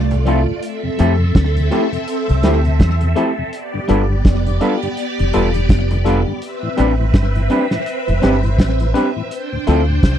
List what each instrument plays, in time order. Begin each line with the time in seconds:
Already playing: fingered electric bass C2, string machine A3 F4 D5
0.10 tonewheel organ D2 A2, tine electric piano E4 F4, muted clean electric guitar stroke, closed hi-hat
0.24 tonewheel organ F3 C4 D4, clean electric guitar A3 C4 F4 A4, tine electric piano A3 C4 E4 F4, closed hi-hat
0.46 tonewheel organ D2 A2
0.63 string machine C4 A4 E5, closed hi-hat
0.83 tonewheel organ F2 C3
0.97 fingered electric bass F2, tonewheel organ F3 A3 E4, clean electric guitar A3 C4 E4 A4, tine electric piano A3 C4 E4 G4, closed hi-hat
1.19 tonewheel organ F2 C3
1.35 fingered electric bass D2, kick, snare, closed hi-hat
1.55 tonewheel organ F2 C3, closed hi-hat
1.70 tonewheel organ F3 A3 E4, clean electric guitar A3 C4 E4 A4, tine electric piano A3 C4 E4 G4, closed hi-hat
1.92 tonewheel organ F2 C3, closed hi-hat
2.08 closed hi-hat
2.28 fingered electric bass C2, tonewheel organ F2 C3, closed hi-hat
2.42 fingered electric bass D2, tonewheel organ F3 A3 E4, tine electric piano A3 C4 E4 G4, clean electric guitar A3 C4 E4 A4, snare, closed hi-hat
2.64 tonewheel organ F2 C3, closed hi-hat
2.80 fingered electric bass E2, kick, snare, closed hi-hat
3.01 tonewheel organ F2 C3, tine electric piano E4 G4, closed hi-hat
3.16 tonewheel organ F3 A3 E4, tine electric piano A3 C4 E4 G4, clean electric guitar A3 C4 E4 A4, closed hi-hat
3.38 tonewheel organ F2 C3
3.53 string machine B3 G4 D5, closed hi-hat
3.74 tonewheel organ G2 D3
3.88 fingered electric bass G1, clean electric guitar G3 D4 F4 B4, tonewheel organ G3 B3 F4, tine electric piano B3 D4 F4 A4, closed hi-hat
4.10 tonewheel organ G2 D3
4.25 fingered electric bass F1, kick, snare, closed hi-hat
4.46 tonewheel organ G2 D3, closed hi-hat
4.61 tonewheel organ G3 B3 F4, clean electric guitar G3 D4 F4 B4, tine electric piano B3 D4 F4 A4, closed hi-hat
4.82 tonewheel organ G2 D3, closed hi-hat
4.97 closed hi-hat
5.19 fingered electric bass F1, tonewheel organ G2 D3, closed hi-hat
5.33 fingered electric bass E1, clean electric guitar G3 D4 F4 B4, tonewheel organ G3 B3 F4, tine electric piano B3 D4 F4 A4, closed hi-hat
5.54 tonewheel organ G2 D3, closed hi-hat
5.69 fingered electric bass F1, kick, snare, closed hi-hat
5.90 tonewheel organ G2 D3, tine electric piano F4 A4, muted clean electric guitar stroke, closed hi-hat
6.04 clean electric guitar G3 D4 F4 B4, tonewheel organ G3 B3 F4, tine electric piano B3 D4 F4 A4, closed hi-hat
6.27 tonewheel organ G2 D3
6.42 string machine C4 B4 E5, closed hi-hat
6.63 tonewheel organ A2 E3
6.77 fingered electric bass A1, tonewheel organ G3 B3 C4 D4, tine electric piano C4 D4 G4 B4, clean electric guitar C4 D4 G4 B4, closed hi-hat
7.00 tonewheel organ A2 E3
7.14 fingered electric bass G1, kick, snare, closed hi-hat
7.35 tonewheel organ A2 E3, closed hi-hat
7.50 tonewheel organ G3 B3 C4 D4, clean electric guitar C4 D4 G4 B4, tine electric piano C4 D4 G4 B4, closed hi-hat
7.71 tonewheel organ A2 E3, snare, closed hi-hat
7.86 closed hi-hat
8.08 fingered electric bass F1, tonewheel organ A2 E3, closed hi-hat
8.21 fingered electric bass G1, tonewheel organ G3 B3 C4 D4, clean electric guitar C4 D4 G4 B4, tine electric piano C4 D4 G4 B4, snare, closed hi-hat
8.43 tonewheel organ A2 E3, closed hi-hat
8.59 fingered electric bass A1, kick, snare, closed hi-hat
8.80 tonewheel organ A2 E3, tine electric piano G4 B4, closed hi-hat
8.94 tonewheel organ G3 B3 C4 D4, tine electric piano C4 D4 G4 B4, clean electric guitar C4 D4 G4 B4, closed hi-hat
9.16 tonewheel organ A2 E3
9.31 string machine D4 C5 G5, closed hi-hat
9.52 tonewheel organ D2 A2
9.67 fingered electric bass D2, tonewheel organ F3 C4 D4, clean electric guitar A3 C4 F4 A4, tine electric piano C4 E4 F4 A4, closed hi-hat
9.89 tonewheel organ D2 A2
10.03 fingered electric bass C2, kick, snare, closed hi-hat